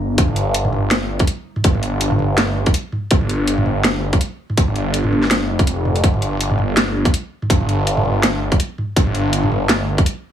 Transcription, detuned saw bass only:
0, 0, Header, 1, 2, 480
1, 0, Start_track
1, 0, Tempo, 365854
1, 241, Time_signature, 4, 2, 24, 8
1, 13541, End_track
2, 0, Start_track
2, 0, Title_t, "Detuned saw bass"
2, 0, Program_c, 0, 39
2, 0, Note_on_c, 0, 31, 85
2, 217, Note_off_c, 0, 31, 0
2, 240, Note_on_c, 0, 31, 101
2, 1667, Note_off_c, 0, 31, 0
2, 2157, Note_on_c, 0, 31, 105
2, 3585, Note_off_c, 0, 31, 0
2, 4083, Note_on_c, 0, 31, 101
2, 5508, Note_off_c, 0, 31, 0
2, 6003, Note_on_c, 0, 31, 100
2, 7200, Note_on_c, 0, 29, 96
2, 7220, Note_off_c, 0, 31, 0
2, 7907, Note_off_c, 0, 29, 0
2, 7918, Note_on_c, 0, 31, 103
2, 9346, Note_off_c, 0, 31, 0
2, 9838, Note_on_c, 0, 31, 100
2, 11266, Note_off_c, 0, 31, 0
2, 11760, Note_on_c, 0, 31, 100
2, 13187, Note_off_c, 0, 31, 0
2, 13541, End_track
0, 0, End_of_file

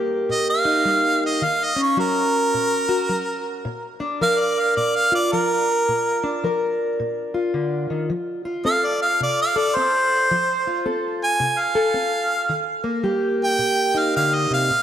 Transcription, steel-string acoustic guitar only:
0, 0, Header, 1, 2, 480
1, 0, Start_track
1, 0, Tempo, 557621
1, 1215, Time_signature, 4, 2, 24, 8
1, 5530, Tempo, 550964
1, 12850, End_track
2, 0, Start_track
2, 0, Title_t, "Steel-string acoustic guitar"
2, 0, Program_c, 0, 25
2, 0, Note_on_c, 0, 55, 63
2, 0, Note_on_c, 0, 58, 55
2, 0, Note_on_c, 0, 67, 63
2, 214, Note_off_c, 0, 55, 0
2, 250, Note_on_c, 0, 46, 60
2, 560, Note_on_c, 0, 63, 60
2, 696, Note_off_c, 0, 46, 0
2, 733, Note_on_c, 0, 55, 64
2, 1178, Note_off_c, 0, 55, 0
2, 1198, Note_off_c, 0, 63, 0
2, 1217, Note_off_c, 0, 67, 0
2, 1218, Note_on_c, 0, 51, 73
2, 1513, Note_off_c, 0, 58, 0
2, 1516, Note_on_c, 0, 61, 58
2, 1661, Note_off_c, 0, 51, 0
2, 1694, Note_on_c, 0, 54, 62
2, 1699, Note_on_c, 0, 66, 60
2, 2139, Note_off_c, 0, 54, 0
2, 2187, Note_on_c, 0, 46, 69
2, 2475, Note_off_c, 0, 66, 0
2, 2485, Note_on_c, 0, 66, 60
2, 2626, Note_off_c, 0, 46, 0
2, 2660, Note_on_c, 0, 54, 63
2, 3102, Note_off_c, 0, 54, 0
2, 3118, Note_off_c, 0, 61, 0
2, 3122, Note_off_c, 0, 66, 0
2, 3141, Note_on_c, 0, 46, 80
2, 3443, Note_on_c, 0, 62, 60
2, 3582, Note_off_c, 0, 46, 0
2, 3626, Note_on_c, 0, 53, 65
2, 3630, Note_on_c, 0, 70, 65
2, 4064, Note_off_c, 0, 53, 0
2, 4105, Note_on_c, 0, 46, 64
2, 4405, Note_on_c, 0, 65, 55
2, 4543, Note_off_c, 0, 46, 0
2, 4587, Note_on_c, 0, 53, 59
2, 5022, Note_off_c, 0, 53, 0
2, 5036, Note_off_c, 0, 62, 0
2, 5037, Note_off_c, 0, 70, 0
2, 5065, Note_on_c, 0, 46, 72
2, 5367, Note_on_c, 0, 62, 57
2, 5500, Note_off_c, 0, 46, 0
2, 5541, Note_on_c, 0, 53, 62
2, 5547, Note_on_c, 0, 70, 61
2, 5982, Note_off_c, 0, 53, 0
2, 6028, Note_on_c, 0, 46, 68
2, 6326, Note_off_c, 0, 65, 0
2, 6330, Note_on_c, 0, 65, 52
2, 6465, Note_off_c, 0, 46, 0
2, 6500, Note_on_c, 0, 50, 59
2, 6794, Note_off_c, 0, 50, 0
2, 6817, Note_on_c, 0, 51, 60
2, 6961, Note_off_c, 0, 70, 0
2, 6964, Note_off_c, 0, 62, 0
2, 6987, Note_on_c, 0, 53, 76
2, 6989, Note_off_c, 0, 51, 0
2, 7292, Note_off_c, 0, 65, 0
2, 7296, Note_on_c, 0, 65, 58
2, 7425, Note_off_c, 0, 53, 0
2, 7467, Note_on_c, 0, 60, 59
2, 7475, Note_on_c, 0, 69, 62
2, 7905, Note_off_c, 0, 60, 0
2, 7951, Note_on_c, 0, 48, 64
2, 8242, Note_off_c, 0, 69, 0
2, 8260, Note_on_c, 0, 69, 64
2, 8388, Note_off_c, 0, 48, 0
2, 8439, Note_on_c, 0, 60, 59
2, 8871, Note_off_c, 0, 60, 0
2, 8887, Note_off_c, 0, 65, 0
2, 8888, Note_off_c, 0, 69, 0
2, 8916, Note_on_c, 0, 53, 74
2, 9230, Note_on_c, 0, 65, 57
2, 9349, Note_off_c, 0, 53, 0
2, 9390, Note_on_c, 0, 60, 62
2, 9394, Note_on_c, 0, 69, 68
2, 9826, Note_off_c, 0, 60, 0
2, 9863, Note_on_c, 0, 48, 68
2, 10160, Note_off_c, 0, 69, 0
2, 10171, Note_on_c, 0, 69, 69
2, 10302, Note_off_c, 0, 48, 0
2, 10335, Note_on_c, 0, 60, 59
2, 10777, Note_off_c, 0, 60, 0
2, 10802, Note_off_c, 0, 69, 0
2, 10811, Note_off_c, 0, 65, 0
2, 10816, Note_on_c, 0, 51, 71
2, 11117, Note_on_c, 0, 58, 60
2, 11258, Note_off_c, 0, 51, 0
2, 11288, Note_on_c, 0, 55, 63
2, 11292, Note_on_c, 0, 67, 62
2, 11734, Note_off_c, 0, 55, 0
2, 11768, Note_on_c, 0, 46, 64
2, 12081, Note_on_c, 0, 63, 55
2, 12213, Note_off_c, 0, 46, 0
2, 12273, Note_on_c, 0, 50, 60
2, 12558, Note_off_c, 0, 50, 0
2, 12569, Note_on_c, 0, 48, 63
2, 12716, Note_off_c, 0, 63, 0
2, 12730, Note_off_c, 0, 67, 0
2, 12742, Note_off_c, 0, 48, 0
2, 12744, Note_on_c, 0, 46, 73
2, 12850, Note_off_c, 0, 46, 0
2, 12850, Note_off_c, 0, 58, 0
2, 12850, End_track
0, 0, End_of_file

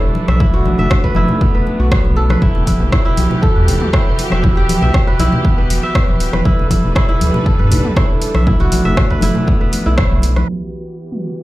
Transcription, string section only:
0, 0, Header, 1, 2, 480
1, 0, Start_track
1, 0, Key_signature, 1, "minor"
1, 0, Tempo, 504202
1, 384, Time_signature, 4, 2, 24, 8
1, 10881, End_track
2, 0, Start_track
2, 0, Title_t, "String section"
2, 0, Program_c, 0, 48
2, 0, Note_on_c, 0, 55, 85
2, 0, Note_on_c, 0, 62, 79
2, 0, Note_on_c, 0, 69, 78
2, 0, Note_on_c, 0, 71, 92
2, 363, Note_off_c, 0, 55, 0
2, 364, Note_off_c, 0, 69, 0
2, 364, Note_off_c, 0, 71, 0
2, 379, Note_on_c, 0, 59, 76
2, 381, Note_on_c, 0, 57, 82
2, 2264, Note_off_c, 0, 62, 0
2, 2283, Note_off_c, 0, 57, 0
2, 2299, Note_on_c, 0, 67, 94
2, 2301, Note_on_c, 0, 52, 82
2, 2303, Note_on_c, 0, 66, 77
2, 6103, Note_off_c, 0, 59, 0
2, 6103, Note_off_c, 0, 67, 0
2, 6104, Note_off_c, 0, 52, 0
2, 6105, Note_off_c, 0, 66, 0
2, 6142, Note_on_c, 0, 69, 77
2, 6144, Note_on_c, 0, 71, 90
2, 6145, Note_on_c, 0, 55, 86
2, 6145, Note_on_c, 0, 62, 77
2, 8044, Note_off_c, 0, 69, 0
2, 8044, Note_off_c, 0, 71, 0
2, 8045, Note_off_c, 0, 55, 0
2, 8062, Note_on_c, 0, 57, 84
2, 8063, Note_on_c, 0, 59, 77
2, 9946, Note_off_c, 0, 62, 0
2, 9963, Note_off_c, 0, 57, 0
2, 9964, Note_off_c, 0, 59, 0
2, 9981, Note_on_c, 0, 52, 77
2, 9981, Note_on_c, 0, 59, 69
2, 9981, Note_on_c, 0, 66, 69
2, 9981, Note_on_c, 0, 67, 83
2, 10881, Note_off_c, 0, 52, 0
2, 10881, Note_off_c, 0, 59, 0
2, 10881, Note_off_c, 0, 66, 0
2, 10881, Note_off_c, 0, 67, 0
2, 10881, End_track
0, 0, End_of_file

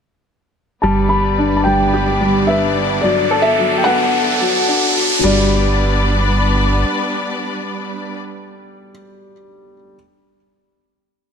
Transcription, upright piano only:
0, 0, Header, 1, 2, 480
1, 0, Start_track
1, 0, Key_signature, 1, "major"
1, 0, Tempo, 550459
1, 726, Time_signature, 4, 2, 24, 8
1, 9875, End_track
2, 0, Start_track
2, 0, Title_t, "Upright piano"
2, 0, Program_c, 0, 0
2, 726, Note_on_c, 0, 55, 88
2, 881, Control_c, 0, 64, 127
2, 954, Note_off_c, 0, 55, 0
2, 1205, Note_on_c, 0, 62, 65
2, 1433, Note_off_c, 0, 62, 0
2, 1446, Note_on_c, 0, 55, 67
2, 1673, Note_off_c, 0, 55, 0
2, 1687, Note_on_c, 0, 67, 78
2, 1914, Note_off_c, 0, 67, 0
2, 1925, Note_on_c, 0, 55, 67
2, 2153, Note_off_c, 0, 55, 0
2, 2167, Note_on_c, 0, 71, 68
2, 2394, Note_off_c, 0, 71, 0
2, 2647, Note_on_c, 0, 54, 77
2, 2656, Control_c, 0, 64, 0
2, 2791, Control_c, 0, 64, 127
2, 2874, Note_off_c, 0, 54, 0
2, 2885, Note_on_c, 0, 69, 89
2, 3022, Note_off_c, 0, 69, 0
2, 3126, Note_on_c, 0, 54, 73
2, 3354, Note_off_c, 0, 54, 0
2, 3366, Note_on_c, 0, 59, 68
2, 3594, Note_off_c, 0, 59, 0
2, 3847, Note_on_c, 0, 54, 76
2, 4074, Note_off_c, 0, 54, 0
2, 4081, Note_on_c, 0, 62, 71
2, 4311, Note_off_c, 0, 62, 0
2, 4327, Note_on_c, 0, 54, 68
2, 4554, Note_off_c, 0, 54, 0
2, 4565, Note_on_c, 0, 55, 90
2, 4578, Control_c, 0, 64, 0
2, 4706, Control_c, 0, 64, 127
2, 4788, Note_off_c, 0, 55, 0
2, 8677, Control_c, 0, 64, 0
2, 9875, End_track
0, 0, End_of_file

